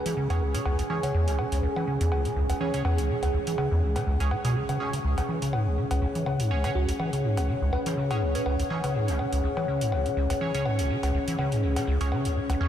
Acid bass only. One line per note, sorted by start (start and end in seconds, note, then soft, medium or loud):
0.06 0.15 E3 medium
0.17 0.28 C#3 medium
0.30 0.42 E2 medium
0.41 0.56 C#2 medium
0.54 0.60 C#3 medium
0.65 0.77 C#2 medium
0.79 0.83 C#2 medium
0.90 1.01 E3 medium
1.03 1.12 C#3 medium
1.14 1.29 E2 loud
1.28 1.40 C#2 medium
1.39 1.46 C#3 medium
1.52 1.61 C#2 medium
1.63 1.68 C#2 medium
1.76 1.85 E3 medium
1.87 1.99 C#3 medium
2.01 2.13 E2 loud
2.12 2.27 C#2 medium
2.25 2.31 C#3 medium
2.36 2.47 C#2 medium
2.50 2.53 C#2 medium
2.61 2.72 E3 medium
2.74 2.83 C#3 medium
2.85 3.00 E2 loud
2.98 3.11 C#2 medium
3.09 3.17 C#3 medium
3.23 3.32 C#2 medium
3.34 3.38 C#2 medium
3.47 3.56 E3 medium
3.58 3.69 C#3 medium
3.72 3.84 E2 loud
3.83 3.98 C#2 medium
3.96 4.02 C#3 medium
4.07 4.18 C#2 medium
4.20 4.33 C#2 medium
4.31 4.36 B2 medium
4.45 4.57 B2 loud
4.56 4.63 C#3 medium
4.69 4.78 C#3 medium
4.93 5.00 C#3 medium
5.04 5.16 C#2 medium
5.18 5.21 C#2 medium
5.29 5.40 E3 medium
5.42 5.55 C#3 medium
5.53 5.68 G#2 medium
5.67 5.79 C#2 medium
5.78 5.85 C#3 medium
5.91 6.00 C#2 medium
6.02 6.07 C#2 medium
6.15 6.25 E3 medium
6.26 6.41 C#3 medium
6.40 6.52 G#2 loud
6.51 6.66 C#2 medium
6.64 6.70 C#3 medium
6.75 6.86 C#2 medium
6.89 6.92 C#2 medium
6.99 7.11 E3 medium
7.13 7.25 C#3 medium
7.24 7.39 G#2 loud
7.37 7.50 C#2 medium
7.48 7.56 C#3 medium
7.62 7.71 C#2 medium
7.86 7.95 E3 medium
7.97 8.12 C#3 medium
8.11 8.23 G#2 medium
8.22 8.37 C#2 medium
8.35 8.41 C#3 medium
8.46 8.57 C#2 medium
8.59 8.63 C#2 medium
8.70 8.81 E3 medium
8.84 8.96 C#3 medium
8.95 9.10 G#2 loud
9.08 9.21 C#2 medium
9.19 9.27 C#3 medium
9.33 9.42 C#2 medium
9.44 9.48 C#2 medium
9.57 9.66 E3 medium
9.68 9.83 C#3 medium
9.81 9.94 G#2 loud
9.92 10.07 C#2 medium
10.06 10.12 C#3 medium
10.17 10.28 C#2 medium
10.30 10.34 C#2 medium
10.41 10.52 E3 medium
10.55 10.67 C#3 medium
10.66 10.81 G#2 loud
10.79 10.91 C#2 medium
10.90 10.97 C#3 medium
11.03 11.12 C#2 medium
11.14 11.19 C#2 medium
11.28 11.37 E3 medium
11.39 11.54 C#3 medium
11.52 11.65 G#2 loud
11.63 11.78 C#2 medium
11.76 11.83 C#3 medium
11.88 11.99 C#2 medium
12.01 12.13 C#2 medium
12.12 12.27 C#3 medium
12.25 12.38 C#2 medium
12.36 12.41 B2 loud
12.50 12.56 C#2 loud
12.61 12.68 E2 loud